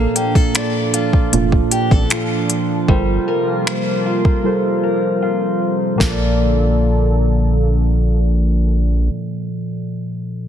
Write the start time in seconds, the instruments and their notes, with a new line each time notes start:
Already playing: synth keys A#2 A#3 D4 A4, analog synth pad A#2 F3 D4, steel-string acoustic guitar A#3 D4 A4
0.16 steel-string acoustic guitar G4, closed hi-hat
0.35 steel-string acoustic guitar A4, kick
0.55 steel-string acoustic guitar F4 A4 D5, finger snap, closed hi-hat
0.94 steel-string acoustic guitar F4, closed hi-hat
1.13 kick
1.32 analog synth bass F1, synth keys A#2 A#3 D4 F4, closed hi-hat
1.52 kick
1.71 steel-string acoustic guitar G4, closed hi-hat
1.91 analog synth bass A1, steel-string acoustic guitar A4, kick
2.10 steel-string acoustic guitar F4, finger snap, closed hi-hat
2.50 closed hi-hat
2.88 analog synth bass G1, analog synth pad C3 A#3 F4, synth keys G3 F4 A4 A#4 C5, steel-string acoustic guitar G3, kick
3.28 steel-string acoustic guitar A#4
3.67 steel-string acoustic guitar F4 A#4 C5, finger snap
4.06 steel-string acoustic guitar F4
4.25 kick
4.43 synth keys G3 F4 A4 A#4 C5
4.83 steel-string acoustic guitar A#4
5.22 steel-string acoustic guitar F4
5.95 synth keys A#2 F3, steel-string acoustic guitar A#3
6.00 analog synth bass A#1, analog synth pad D3 A#3 A4, steel-string acoustic guitar F4 A4, synth keys A4, kick, snare
6.06 synth keys D5, steel-string acoustic guitar D5